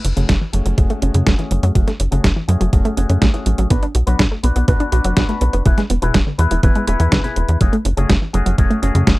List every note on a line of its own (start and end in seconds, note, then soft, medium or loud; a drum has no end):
0.05 0.13 F#1 medium
0.05 0.13 C#4 medium
0.05 closed hi-hat medium
0.16 0.25 F#1 medium
0.16 0.26 C#3 loud
0.16 0.31 A3 medium
0.16 0.31 C#4 medium
0.16 0.31 F#4 medium
0.16 0.31 G#4 loud
0.16 closed hi-hat soft
0.29 0.38 F#1 loud
0.29 0.38 A3 medium
0.29 kick loud
0.29 snare loud
0.29 closed hi-hat medium
0.41 0.50 E3 medium
0.53 0.62 F#1 medium
0.53 0.64 F#3 medium
0.53 0.75 A3 medium
0.53 0.75 C#4 medium
0.53 0.75 F#4 medium
0.53 0.75 G#4 medium
0.53 closed hi-hat medium
0.66 0.74 F#1 medium
0.66 0.71 F#3 medium
0.66 closed hi-hat medium
0.77 0.86 F#1 loud
0.77 0.89 F#3 medium
0.77 0.99 A3 medium
0.77 0.99 C#4 medium
0.77 0.99 F#4 medium
0.77 0.99 G#4 medium
0.77 kick loud
0.77 closed hi-hat medium
0.90 0.99 A3 medium
0.90 closed hi-hat soft
1.02 1.11 F#1 medium
1.02 1.36 A3 medium
1.02 1.11 C#4 medium
1.02 1.36 C#4 medium
1.02 1.36 F#4 medium
1.02 1.36 G#4 loud
1.02 closed hi-hat medium
1.14 1.23 F#2 medium
1.14 1.23 C#3 loud
1.14 closed hi-hat soft
1.27 1.35 F#1 medium
1.27 1.35 A3 medium
1.27 kick loud
1.27 snare loud
1.27 closed hi-hat medium
1.38 1.48 E3 medium
1.38 1.72 A3 medium
1.38 1.72 C#4 medium
1.38 1.72 F#4 medium
1.38 1.72 G#4 medium
1.38 closed hi-hat soft
1.51 1.60 F#1 medium
1.51 1.62 F#3 medium
1.51 closed hi-hat medium
1.63 1.72 F#2 medium
1.63 1.68 F#3 loud
1.63 closed hi-hat medium
1.75 1.84 F#1 loud
1.75 1.87 F#3 medium
1.75 1.89 A3 medium
1.75 1.89 C#4 medium
1.75 1.89 F#4 medium
1.75 1.89 G#4 medium
1.75 kick loud
1.75 closed hi-hat medium
1.88 1.96 A3 medium
1.88 snare soft
1.88 closed hi-hat soft
2.00 2.08 F#1 medium
2.00 2.09 C#4 medium
2.00 closed hi-hat medium
2.11 2.21 F#1 medium
2.11 2.21 C#3 loud
2.11 2.26 A3 medium
2.11 2.26 C#4 medium
2.11 2.26 F#4 medium
2.11 2.26 G#4 loud
2.11 closed hi-hat medium
2.24 2.33 F#1 loud
2.24 2.33 A3 medium
2.24 kick loud
2.24 snare loud
2.24 closed hi-hat medium
2.36 2.45 E3 medium
2.48 2.57 F#2 medium
2.48 2.59 F#3 medium
2.48 2.70 A3 medium
2.48 2.70 C#4 medium
2.48 2.70 F#4 medium
2.48 2.70 G#4 medium
2.48 closed hi-hat medium
2.61 2.69 F#1 medium
2.61 2.66 F#3 medium
2.61 closed hi-hat medium
2.73 2.81 F#1 loud
2.73 2.84 F#3 medium
2.73 2.94 A3 medium
2.73 2.94 C#4 medium
2.73 2.94 F#4 medium
2.73 2.94 G#4 medium
2.73 kick loud
2.73 closed hi-hat medium
2.85 2.94 A3 medium
2.85 closed hi-hat soft
2.97 3.06 F#1 medium
2.97 3.31 A3 medium
2.97 3.06 C#4 medium
2.97 3.31 C#4 medium
2.97 3.31 F#4 medium
2.97 3.31 G#4 loud
2.97 closed hi-hat medium
3.09 3.18 F#2 medium
3.09 3.18 C#3 loud
3.09 closed hi-hat medium
3.22 3.30 A1 loud
3.22 3.30 A3 medium
3.22 kick loud
3.22 snare loud
3.22 closed hi-hat medium
3.33 3.43 E3 medium
3.33 3.68 A3 medium
3.33 3.67 C#4 medium
3.33 3.68 F#4 medium
3.33 3.68 G#4 medium
3.33 closed hi-hat soft
3.46 3.55 A1 medium
3.46 3.57 F#3 medium
3.46 closed hi-hat medium
3.58 3.67 A1 medium
3.58 3.64 F#3 loud
3.58 closed hi-hat soft
3.70 3.79 B1 loud
3.70 3.84 B3 medium
3.70 3.82 B3 medium
3.70 3.84 D4 medium
3.70 3.84 F#4 medium
3.70 3.84 B4 medium
3.70 kick loud
3.70 closed hi-hat medium
3.83 3.92 D4 medium
3.83 closed hi-hat soft
3.95 4.03 B1 medium
3.95 4.04 F#4 medium
3.95 closed hi-hat medium
4.07 4.16 B1 medium
4.07 4.16 F#3 loud
4.07 4.21 B3 medium
4.07 4.21 D4 medium
4.07 4.21 F#4 medium
4.07 4.21 B4 loud
4.07 closed hi-hat medium
4.19 4.28 B1 loud
4.19 4.28 D4 medium
4.19 kick loud
4.19 snare loud
4.19 closed hi-hat medium
4.32 4.40 A3 medium
4.43 4.52 B1 medium
4.43 4.55 B3 medium
4.43 4.65 B3 medium
4.43 4.65 D4 medium
4.43 4.65 F#4 medium
4.43 4.65 B4 medium
4.43 closed hi-hat medium
4.56 4.64 B1 medium
4.56 4.61 B3 loud
4.56 closed hi-hat medium
4.68 4.77 B1 loud
4.68 4.89 B3 medium
4.68 4.80 B3 medium
4.68 4.89 D4 medium
4.68 4.89 F#4 medium
4.68 4.89 B4 medium
4.68 kick loud
4.68 closed hi-hat medium
4.80 4.89 D4 medium
4.80 closed hi-hat soft
4.92 5.01 B1 medium
4.92 5.26 B3 medium
4.92 5.26 D4 medium
4.92 5.26 F#4 medium
4.92 5.01 F#4 medium
4.92 5.26 B4 loud
4.92 closed hi-hat medium
5.04 5.13 F#1 medium
5.04 5.13 F#3 loud
5.04 closed hi-hat medium
5.17 5.25 B1 loud
5.17 5.26 D4 medium
5.17 kick loud
5.17 snare loud
5.17 closed hi-hat medium
5.29 5.38 A3 medium
5.29 5.63 B3 medium
5.29 5.63 D4 medium
5.29 5.63 F#4 medium
5.29 5.63 B4 medium
5.29 closed hi-hat soft
5.41 5.50 B1 medium
5.41 5.52 B3 medium
5.41 closed hi-hat medium
5.53 5.62 F#1 medium
5.53 5.59 B3 medium
5.53 closed hi-hat soft
5.65 5.74 E1 loud
5.65 5.77 E3 medium
5.65 5.80 B3 medium
5.65 5.80 E4 medium
5.65 5.80 G#4 medium
5.65 5.80 B4 medium
5.65 kick loud
5.65 closed hi-hat medium
5.78 5.87 G#3 medium
5.78 snare soft
5.78 closed hi-hat soft
5.90 5.99 E1 medium
5.90 5.99 B3 medium
5.90 closed hi-hat medium
6.02 6.11 E1 medium
6.02 6.11 B2 loud
6.02 6.16 B3 medium
6.02 6.16 E4 medium
6.02 6.16 G#4 medium
6.02 6.16 B4 medium
6.02 closed hi-hat soft
6.14 6.23 E1 loud
6.14 6.23 G#3 medium
6.14 kick loud
6.14 snare loud
6.14 closed hi-hat medium
6.27 6.35 D3 medium
6.38 6.47 E2 medium
6.38 6.50 E3 medium
6.38 6.60 B3 medium
6.38 6.60 E4 medium
6.38 6.60 G#4 medium
6.38 6.60 B4 medium
6.38 closed hi-hat medium
6.51 6.60 E1 medium
6.51 6.56 E3 loud
6.51 closed hi-hat medium
6.63 6.72 E1 loud
6.63 6.75 E3 medium
6.63 6.85 B3 medium
6.63 6.85 E4 medium
6.63 6.85 G#4 medium
6.63 6.85 B4 medium
6.63 kick loud
6.63 closed hi-hat medium
6.75 6.84 G#3 medium
6.75 closed hi-hat soft
6.87 6.96 E1 medium
6.87 6.96 G#3 medium
6.87 7.21 B3 medium
6.87 7.21 E4 medium
6.87 7.21 G#4 medium
6.87 7.21 B4 loud
6.87 closed hi-hat medium
7.00 7.08 E2 medium
7.00 7.09 E3 loud
7.00 closed hi-hat medium
7.12 7.21 B1 loud
7.12 7.24 D3 medium
7.12 kick loud
7.12 snare loud
7.12 closed hi-hat medium
7.24 7.33 B2 medium
7.24 7.58 B3 medium
7.24 7.58 E4 medium
7.24 7.58 G#4 medium
7.24 7.58 B4 medium
7.24 closed hi-hat soft
7.36 7.45 E1 medium
7.36 7.45 B3 medium
7.36 closed hi-hat medium
7.49 7.57 E2 medium
7.49 7.60 E3 medium
7.49 closed hi-hat soft
7.60 7.69 F#1 loud
7.60 7.72 F#3 medium
7.60 7.75 A3 medium
7.60 7.75 C#4 medium
7.60 7.75 F#4 medium
7.60 7.75 G#4 medium
7.60 kick loud
7.60 closed hi-hat medium
7.73 7.82 A3 loud
7.73 closed hi-hat soft
7.85 7.94 F#1 medium
7.85 7.94 C#4 medium
7.85 closed hi-hat medium
7.97 8.06 F#1 medium
7.97 8.06 C#3 loud
7.97 8.11 A3 medium
7.97 8.11 C#4 medium
7.97 8.11 F#4 medium
7.97 8.11 G#4 loud
7.97 closed hi-hat soft
8.09 8.18 F#1 medium
8.09 8.18 A3 medium
8.09 kick loud
8.09 snare loud
8.09 closed hi-hat medium
8.22 8.31 E3 medium
8.33 8.43 F#1 medium
8.33 8.45 F#3 medium
8.33 8.55 A3 medium
8.33 8.55 C#4 medium
8.33 8.55 F#4 medium
8.33 8.55 G#4 medium
8.33 closed hi-hat medium
8.46 8.55 F#1 medium
8.46 8.51 F#3 loud
8.46 closed hi-hat soft
8.58 8.67 F#1 loud
8.58 8.70 F#3 medium
8.58 8.80 A3 medium
8.58 8.80 C#4 medium
8.58 8.80 F#4 medium
8.58 8.80 G#4 medium
8.58 kick loud
8.58 closed hi-hat medium
8.70 8.79 A3 loud
8.70 closed hi-hat soft
8.82 8.91 F#1 medium
8.82 9.16 A3 medium
8.82 8.92 C#4 medium
8.82 9.16 C#4 medium
8.82 9.16 F#4 medium
8.82 9.16 G#4 loud
8.82 closed hi-hat medium
8.95 9.03 F#2 medium
8.95 9.04 C#3 loud
8.95 closed hi-hat soft
9.07 9.16 F#1 loud
9.07 9.16 A3 medium
9.07 kick loud
9.07 snare loud
9.07 closed hi-hat medium